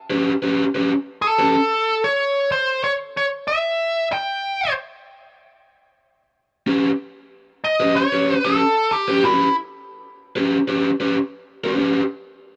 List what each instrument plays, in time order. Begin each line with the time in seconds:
0.10 overdriven electric guitar C#4 G4 B4
0.42 overdriven electric guitar C#4 G4 B4
0.75 overdriven electric guitar C#4 G4 B4
1.22 lead electric guitar A4
1.39 overdriven electric guitar C#4 G4 B4
2.04 lead electric guitar C#5
2.52 lead electric guitar C5
2.84 lead electric guitar C#5
3.17 lead electric guitar C#5
3.48 lead electric guitar E5
4.13 lead electric guitar G5
6.67 overdriven electric guitar C#4 G4 B4
7.64 lead electric guitar D#5
7.80 overdriven electric guitar C#4 G4 B4
7.96 lead electric guitar C#5
8.12 overdriven electric guitar C#4 G4 B4
8.45 overdriven electric guitar C#4 G4 B4, lead electric guitar A4
8.92 lead electric guitar G4
9.08 overdriven electric guitar C#4 G4 B4
9.24 overdriven electric guitar C#4 G4 B4, lead electric guitar E4
10.36 overdriven electric guitar C#4 G4 B4
10.68 overdriven electric guitar C#4 G4 B4
11.00 overdriven electric guitar C#4 G4 B4
11.64 overdriven electric guitar C#4 G4 B4
11.78 overdriven electric guitar C#4 G4 B4